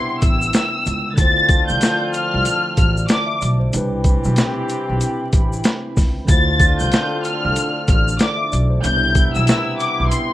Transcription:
0.00 0.83 C3 medium
0.00 1.12 C3 medium
0.00 1.13 G3 medium
0.00 0.83 B3 medium
0.00 1.15 B3 medium
0.00 1.14 D4 medium
0.00 0.83 E4 loud
0.00 1.15 E4 medium
0.00 1.15 G5 medium
0.00 0.18 C6 medium
0.22 0.50 A1 medium
0.22 1.14 E6 medium
0.22 kick loud
0.22 closed hi-hat medium
0.22 shaker soft
0.42 shaker medium
0.53 snare loud
0.53 closed hi-hat loud
0.53 shaker medium
0.86 1.14 C#2 loud
0.86 closed hi-hat medium
0.86 shaker soft
1.14 3.67 D3 medium
1.14 3.37 D3 medium
1.14 3.70 F3 medium
1.14 3.68 A3 medium
1.14 3.37 C4 loud
1.14 3.69 E4 medium
1.14 3.37 F4 loud
1.14 3.70 D5 medium
1.14 3.70 A5 medium
1.14 1.66 A6 loud
1.14 kick loud
1.14 closed hi-hat loud
1.14 shaker medium
1.18 1.62 D2 loud
1.18 3.70 F4 medium
1.18 2.76 C5 medium
1.49 kick loud
1.49 closed hi-hat medium
1.49 shaker medium
1.69 1.80 C2 medium
1.69 2.11 G6 medium
1.69 shaker medium
1.81 snare loud
1.81 closed hi-hat medium
1.81 shaker medium
2.14 2.74 F6 medium
2.14 closed hi-hat medium
2.14 shaker soft
2.34 2.44 C2 medium
2.45 closed hi-hat medium
2.45 shaker medium
2.77 3.05 A1 medium
2.77 3.06 F6 medium
2.77 kick loud
2.77 closed hi-hat medium
2.77 shaker soft
2.97 shaker medium
3.09 3.29 D5 medium
3.09 3.38 D6 medium
3.09 snare loud
3.09 closed hi-hat loud
3.09 shaker medium
3.26 3.39 E5 medium
3.41 3.69 B1 loud
3.41 3.60 D5 medium
3.41 closed hi-hat medium
3.41 shaker soft
3.59 3.90 C5 medium
3.69 6.22 C3 medium
3.69 6.23 G3 medium
3.69 6.26 C4 medium
3.69 6.24 D4 medium
3.69 6.26 E4 medium
3.69 6.26 G5 medium
3.69 6.26 B5 medium
3.69 closed hi-hat loud
3.69 shaker medium
3.74 4.18 C2 loud
3.74 5.93 E3 medium
3.74 5.93 C4 medium
3.74 6.25 E4 medium
3.74 5.93 G4 loud
3.74 6.26 B4 medium
4.04 kick loud
4.04 closed hi-hat medium
4.04 shaker medium
4.24 4.36 B1 medium
4.24 shaker medium
4.36 snare loud
4.36 closed hi-hat medium
4.36 shaker medium
4.69 closed hi-hat medium
4.69 shaker soft
4.89 5.00 B1 medium
5.01 closed hi-hat medium
5.01 shaker medium
5.33 5.61 A1 medium
5.33 kick loud
5.33 closed hi-hat medium
5.33 shaker soft
5.53 shaker medium
5.64 snare loud
5.64 closed hi-hat loud
5.64 shaker medium
5.97 6.24 C#2 loud
5.97 kick loud
5.97 snare soft
5.97 open hi-hat medium
5.97 shaker soft
6.25 6.73 D2 loud
6.25 8.78 D3 medium
6.25 8.79 A3 medium
6.25 8.48 C4 medium
6.25 8.80 E4 medium
6.25 kick loud
6.25 closed hi-hat loud
6.25 shaker medium
6.29 8.48 D3 medium
6.29 8.82 D4 medium
6.29 8.48 F4 loud
6.29 8.81 F4 medium
6.29 8.82 A4 medium
6.29 7.87 C5 medium
6.29 8.82 D5 medium
6.29 6.77 A6 loud
6.60 kick loud
6.60 closed hi-hat medium
6.60 shaker medium
6.80 6.91 C2 medium
6.80 7.22 G6 medium
6.80 shaker medium
6.92 snare loud
6.92 closed hi-hat medium
6.92 shaker medium
7.24 7.84 F6 medium
7.24 closed hi-hat medium
7.24 shaker soft
7.45 7.55 C2 medium
7.56 closed hi-hat medium
7.56 shaker medium
7.88 8.16 A1 medium
7.88 8.17 F6 medium
7.88 kick loud
7.88 closed hi-hat medium
7.88 shaker soft
8.08 shaker medium
8.19 8.39 D5 medium
8.19 8.49 D6 medium
8.19 snare loud
8.19 closed hi-hat loud
8.19 shaker medium
8.37 8.50 E5 medium
8.52 8.80 B1 medium
8.52 8.70 D5 medium
8.52 closed hi-hat medium
8.52 shaker soft
8.70 9.01 C5 medium
8.80 10.33 C3 medium
8.80 10.33 G3 medium
8.80 10.33 D4 medium
8.84 9.28 C2 loud
8.84 10.33 C3 medium
8.84 10.33 B3 medium
8.84 10.33 E4 medium
8.84 10.33 E4 loud
8.84 10.33 E4 medium
8.84 10.33 G5 medium
8.84 9.32 G6 loud
8.84 closed hi-hat loud
8.84 shaker medium
9.15 kick medium
9.15 closed hi-hat medium
9.15 shaker medium
9.35 9.46 B1 medium
9.35 9.78 E6 medium
9.35 shaker medium
9.47 snare loud
9.47 closed hi-hat medium
9.47 shaker medium
9.79 10.08 D6 medium
9.79 closed hi-hat medium
9.79 shaker soft
10.00 10.10 B1 medium
10.10 10.33 C6 medium
10.10 closed hi-hat medium
10.10 shaker medium

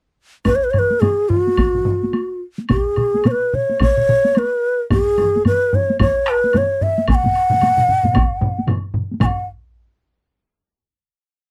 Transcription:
0.45 0.57 B4 medium
0.45 taiko medium
0.45 taiko low-mid medium
0.45 taiko high medium
0.45 high woodblock soft
0.55 0.65 C#5 medium
0.64 0.72 B4 medium
0.70 0.80 C#5 medium
0.70 taiko low-mid medium
0.70 high woodblock soft
0.79 1.02 B4 medium
0.90 taiko high soft
1.00 1.30 G#4 medium
1.00 taiko low-mid medium
1.00 taiko high medium
1.00 high woodblock soft
1.29 1.40 F4 medium
1.29 taiko low-mid medium
1.40 2.41 F#4 medium
1.47 taiko high soft
1.57 taiko medium
1.57 taiko low-mid medium
1.57 taiko high medium
1.57 high woodblock medium
1.75 taiko low-mid medium
1.86 taiko low-mid medium
2.03 taiko high soft
2.13 taiko high medium
2.13 high woodblock soft
2.58 taiko high soft
2.69 3.28 G#4 medium
2.69 taiko medium
2.69 taiko mid medium
2.69 taiko high medium
2.69 high woodblock soft
2.96 taiko mid medium
2.96 high woodblock soft
3.14 taiko high soft
3.24 3.32 C#5 medium
3.24 taiko mid medium
3.24 taiko high medium
3.24 high woodblock soft
3.31 3.56 B4 medium
3.54 3.82 C#5 medium
3.54 taiko mid medium
3.70 taiko high soft
3.80 4.40 C#5 medium
3.80 taiko medium
3.80 taiko mid medium
3.80 taiko high medium
3.80 high woodblock medium
3.97 taiko mid medium
4.09 taiko mid medium
4.25 taiko high medium
4.35 4.81 B4 medium
4.35 taiko high medium
4.35 high woodblock soft
4.90 5.43 G#4 medium
4.90 taiko loud
4.90 taiko low-mid medium
4.90 taiko high medium
4.90 high woodblock soft
5.18 taiko low-mid medium
5.18 high woodblock soft
5.36 taiko high soft
5.45 5.76 B4 medium
5.45 taiko low-mid medium
5.45 taiko high medium
5.45 high woodblock soft
5.73 6.00 C#5 medium
5.73 taiko low-mid medium
5.90 taiko high medium
6.00 6.31 C#5 medium
6.00 taiko medium
6.00 taiko low-mid medium
6.00 taiko high medium
6.00 high woodblock medium
6.27 6.59 B4 medium
6.27 taiko rim medium
6.44 taiko high soft
6.53 taiko low-mid medium
6.53 taiko high medium
6.53 high woodblock soft
6.57 6.84 C#5 medium
6.81 7.09 E5 medium
6.81 taiko low-mid medium
6.99 taiko high soft
7.08 7.16 G#5 medium
7.08 taiko loud
7.08 taiko low-mid medium
7.08 taiko mid medium
7.08 taiko high medium
7.08 high woodblock medium
7.15 8.65 F#5 medium
7.24 taiko low-mid medium
7.24 taiko mid medium
7.24 taiko high soft
7.35 high woodblock soft
7.50 taiko low-mid medium
7.50 taiko mid medium
7.50 taiko high soft
7.61 taiko low-mid medium
7.61 taiko mid medium
7.61 taiko high medium
7.61 high woodblock soft
7.77 taiko low-mid medium
7.77 taiko mid medium
7.88 taiko low-mid medium
7.88 taiko mid medium
8.04 taiko low-mid medium
8.04 taiko mid medium
8.04 taiko high soft
8.14 taiko medium
8.14 taiko low-mid medium
8.14 taiko mid medium
8.14 taiko high medium
8.14 high woodblock medium
8.41 taiko low-mid medium
8.41 taiko mid medium
8.58 taiko high soft
8.67 taiko low-mid medium
8.67 taiko mid medium
8.67 taiko high medium
8.67 high woodblock soft
8.94 taiko low-mid medium
8.94 taiko mid medium
9.11 taiko high soft
9.20 9.27 G#5 medium
9.20 taiko medium
9.20 taiko low-mid medium
9.20 taiko mid medium
9.20 taiko high medium
9.20 high woodblock medium
9.26 9.46 F#5 medium

